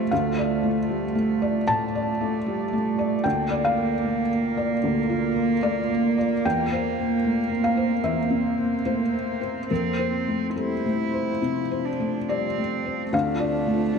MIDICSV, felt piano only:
0, 0, Header, 1, 2, 480
1, 0, Start_track
1, 0, Key_signature, -1, "minor"
1, 0, Tempo, 784314
1, 70, Time_signature, 4, 2, 24, 8
1, 2951, Tempo, 802139
1, 4871, Tempo, 834492
1, 5831, Tempo, 864553
1, 7271, Tempo, 820793
1, 8262, End_track
2, 0, Start_track
2, 0, Title_t, "Felt piano"
2, 0, Program_c, 0, 0
2, 0, Control_c, 0, 64, 127
2, 0, Note_on_c, 0, 48, 37
2, 0, Note_on_c, 0, 55, 38
2, 0, Note_on_c, 0, 57, 41
2, 0, Note_on_c, 0, 72, 43
2, 0, Note_on_c, 0, 76, 73
2, 70, Note_on_c, 0, 77, 66
2, 73, Note_off_c, 0, 72, 0
2, 76, Note_on_c, 0, 38, 57
2, 80, Control_c, 0, 64, 0
2, 83, Note_off_c, 0, 48, 0
2, 84, Note_off_c, 0, 76, 0
2, 85, Note_off_c, 0, 55, 0
2, 86, Note_off_c, 0, 57, 0
2, 183, Control_c, 0, 64, 127
2, 234, Note_on_c, 0, 74, 47
2, 387, Note_on_c, 0, 57, 48
2, 484, Note_off_c, 0, 74, 0
2, 544, Note_on_c, 0, 55, 35
2, 640, Note_off_c, 0, 57, 0
2, 704, Note_off_c, 0, 55, 0
2, 705, Note_on_c, 0, 57, 43
2, 869, Note_on_c, 0, 74, 46
2, 961, Note_off_c, 0, 57, 0
2, 1000, Note_off_c, 0, 77, 0
2, 1003, Note_off_c, 0, 38, 0
2, 1025, Note_on_c, 0, 81, 90
2, 1031, Note_on_c, 0, 45, 40
2, 1123, Note_off_c, 0, 74, 0
2, 1195, Note_on_c, 0, 74, 46
2, 1285, Note_off_c, 0, 45, 0
2, 1352, Note_on_c, 0, 57, 47
2, 1447, Note_off_c, 0, 74, 0
2, 1508, Note_on_c, 0, 55, 41
2, 1606, Note_off_c, 0, 57, 0
2, 1667, Note_off_c, 0, 55, 0
2, 1672, Note_on_c, 0, 57, 41
2, 1827, Note_on_c, 0, 74, 41
2, 1925, Note_off_c, 0, 57, 0
2, 1962, Note_off_c, 0, 81, 0
2, 1981, Note_on_c, 0, 79, 76
2, 1987, Note_off_c, 0, 74, 0
2, 1990, Note_on_c, 0, 38, 57
2, 1999, Control_c, 0, 64, 0
2, 2111, Control_c, 0, 64, 127
2, 2145, Note_on_c, 0, 74, 47
2, 2208, Note_off_c, 0, 79, 0
2, 2231, Note_on_c, 0, 77, 84
2, 2308, Note_on_c, 0, 58, 47
2, 2404, Note_off_c, 0, 74, 0
2, 2469, Note_on_c, 0, 57, 39
2, 2566, Note_off_c, 0, 58, 0
2, 2630, Note_off_c, 0, 57, 0
2, 2638, Note_on_c, 0, 58, 41
2, 2799, Note_on_c, 0, 74, 44
2, 2891, Note_off_c, 0, 58, 0
2, 2929, Note_off_c, 0, 38, 0
2, 2958, Note_on_c, 0, 38, 46
2, 3050, Note_off_c, 0, 74, 0
2, 3114, Note_on_c, 0, 65, 43
2, 3271, Note_on_c, 0, 58, 47
2, 3365, Note_off_c, 0, 65, 0
2, 3405, Note_off_c, 0, 77, 0
2, 3429, Note_on_c, 0, 57, 36
2, 3434, Note_on_c, 0, 74, 68
2, 3526, Note_off_c, 0, 58, 0
2, 3592, Note_off_c, 0, 57, 0
2, 3594, Note_on_c, 0, 58, 39
2, 3755, Note_off_c, 0, 74, 0
2, 3764, Note_on_c, 0, 74, 41
2, 3858, Note_off_c, 0, 58, 0
2, 3901, Note_off_c, 0, 38, 0
2, 3925, Note_off_c, 0, 74, 0
2, 3927, Note_on_c, 0, 40, 46
2, 3927, Note_on_c, 0, 79, 80
2, 3934, Control_c, 0, 64, 0
2, 4040, Control_c, 0, 64, 127
2, 4090, Note_on_c, 0, 72, 44
2, 4245, Note_on_c, 0, 58, 41
2, 4338, Note_off_c, 0, 72, 0
2, 4401, Note_on_c, 0, 57, 32
2, 4493, Note_off_c, 0, 58, 0
2, 4550, Note_on_c, 0, 58, 36
2, 4556, Note_off_c, 0, 57, 0
2, 4612, Note_off_c, 0, 79, 0
2, 4637, Note_on_c, 0, 77, 65
2, 4716, Note_on_c, 0, 72, 40
2, 4806, Note_off_c, 0, 58, 0
2, 4850, Note_off_c, 0, 40, 0
2, 4857, Note_off_c, 0, 77, 0
2, 4874, Note_on_c, 0, 40, 38
2, 4877, Note_on_c, 0, 76, 63
2, 4966, Note_off_c, 0, 72, 0
2, 5027, Note_on_c, 0, 60, 34
2, 5186, Note_on_c, 0, 58, 32
2, 5278, Note_off_c, 0, 60, 0
2, 5321, Note_off_c, 0, 76, 0
2, 5345, Note_on_c, 0, 57, 30
2, 5347, Note_on_c, 0, 72, 49
2, 5440, Note_off_c, 0, 58, 0
2, 5505, Note_off_c, 0, 57, 0
2, 5507, Note_on_c, 0, 58, 31
2, 5657, Note_off_c, 0, 72, 0
2, 5665, Note_on_c, 0, 72, 31
2, 5767, Note_off_c, 0, 58, 0
2, 5810, Note_off_c, 0, 40, 0
2, 5831, Note_off_c, 0, 72, 0
2, 5835, Note_on_c, 0, 70, 49
2, 5836, Note_on_c, 0, 41, 36
2, 5842, Control_c, 0, 64, 0
2, 5948, Control_c, 0, 64, 127
2, 5993, Note_on_c, 0, 72, 34
2, 6154, Note_on_c, 0, 57, 31
2, 6247, Note_off_c, 0, 72, 0
2, 6290, Note_off_c, 0, 70, 0
2, 6309, Note_on_c, 0, 69, 33
2, 6311, Note_on_c, 0, 55, 26
2, 6407, Note_off_c, 0, 57, 0
2, 6470, Note_off_c, 0, 55, 0
2, 6475, Note_on_c, 0, 57, 28
2, 6631, Note_on_c, 0, 72, 29
2, 6726, Note_off_c, 0, 57, 0
2, 6767, Note_off_c, 0, 41, 0
2, 6786, Note_on_c, 0, 48, 30
2, 6884, Note_off_c, 0, 72, 0
2, 6949, Note_on_c, 0, 72, 30
2, 7045, Note_off_c, 0, 48, 0
2, 7107, Note_on_c, 0, 57, 30
2, 7209, Note_off_c, 0, 72, 0
2, 7250, Note_off_c, 0, 69, 0
2, 7271, Note_on_c, 0, 74, 50
2, 7272, Note_on_c, 0, 55, 26
2, 7371, Note_off_c, 0, 57, 0
2, 7436, Note_on_c, 0, 57, 28
2, 7440, Note_off_c, 0, 55, 0
2, 7601, Note_on_c, 0, 72, 28
2, 7698, Note_off_c, 0, 57, 0
2, 7739, Note_off_c, 0, 74, 0
2, 7757, Note_on_c, 0, 38, 47
2, 7762, Note_off_c, 0, 72, 0
2, 7766, Note_on_c, 0, 77, 74
2, 7775, Control_c, 0, 64, 0
2, 7876, Control_c, 0, 64, 127
2, 7918, Note_on_c, 0, 74, 41
2, 8076, Note_on_c, 0, 57, 43
2, 8170, Note_off_c, 0, 74, 0
2, 8235, Note_on_c, 0, 55, 38
2, 8262, Note_off_c, 0, 38, 0
2, 8262, Note_off_c, 0, 55, 0
2, 8262, Note_off_c, 0, 57, 0
2, 8262, Note_off_c, 0, 77, 0
2, 8262, End_track
0, 0, End_of_file